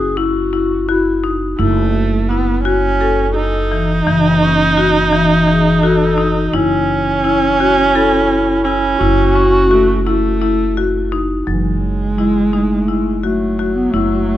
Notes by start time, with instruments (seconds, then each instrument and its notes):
Already playing: upright bass F#1, clarinet G#4
0.17 marimba E4, clarinet F#4
0.53 marimba E4
0.89 clarinet E4, marimba F#4
1.24 marimba D#4
1.58 upright bass F#1, viola A3, marimba E4
2.29 viola B3, marimba E4
2.64 viola C#4, marimba F#4
3.00 clarinet F#4, marimba A4
3.34 viola D#4, clarinet A4
3.72 marimba E3
4.07 upright bass F#1, marimba E3
4.42 marimba C#4
4.77 marimba F#4
5.13 marimba E3
5.48 marimba E3, clarinet G#4
5.83 marimba F#4, clarinet A4
6.18 marimba D#4
6.53 upright bass F#1, viola C#4, marimba E4
7.24 marimba E4
7.60 marimba F#4
7.95 clarinet E4, marimba A4
8.64 viola C#4, marimba E4
8.99 upright bass F#1, marimba E4, clarinet F#4
9.36 marimba C#4
9.71 viola A3, marimba F#4
10.05 viola A3, marimba E4
10.42 marimba E4
10.77 marimba F#4
11.12 marimba D#4
11.45 upright bass F#1, clarinet E3, marimba F#3, viola G#3
11.80 clarinet F#3
12.15 clarinet G#3, marimba E4
12.51 clarinet A3, marimba D#4
12.88 marimba E4
13.21 viola F#3, clarinet A3, marimba F#4
13.59 marimba F#4
13.75 clarinet B3
13.91 upright bass F#1, clarinet A3, marimba E4
14.27 clarinet A3